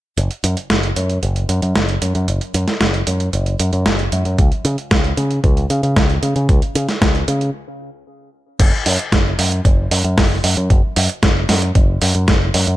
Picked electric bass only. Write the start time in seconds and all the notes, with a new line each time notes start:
0.17 F#1
0.44 F#2
0.70 F#1
0.96 F#2
1.23 F#1
1.49 F#2
1.62 F#2
1.75 F#1
2.02 F#2
2.15 F#2
2.28 F#1
2.54 F#2
2.81 F#1
3.07 F#2
3.33 F#1
3.60 F#2
3.73 F#2
3.86 F#1
4.12 F#2
4.25 F#2
4.39 C#2
4.65 C#3
4.91 C#2
5.17 C#3
5.44 C#2
5.70 C#3
5.83 C#3
5.97 C#2
6.23 C#3
6.36 C#3
6.49 C#2
6.75 C#3
7.02 C#2
7.28 C#3
8.60 F#1
8.86 F#2
9.12 F#1
9.39 F#2
9.65 F#1
9.91 F#2
10.04 F#2
10.18 F#1
10.44 F#2
10.57 F#2
10.70 F#1
10.97 F#2
11.23 F#1
11.49 F#2
11.75 F#1
12.02 F#2
12.15 F#2
12.28 F#1
12.54 F#2
12.68 F#2